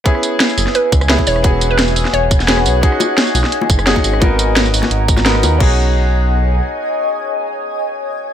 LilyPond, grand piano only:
\new Staff \with { instrumentName = "Grand piano" } { \time 4/4 \key b \major \tempo 4 = 173 <b cis' e' gis'>2. <b cis' e' gis'>8 r8 | <b cis' fis' gis'>2. <b cis' fis' gis'>8 r8 | <cis' dis' fis' gis'>2. <cis' dis' fis' gis'>8 r8 | <b dis' fis' ais'>2. <b dis' fis' ais'>8 r8 |
<cis' dis' fis' gis'>1~ | <cis' dis' fis' gis'>1 | }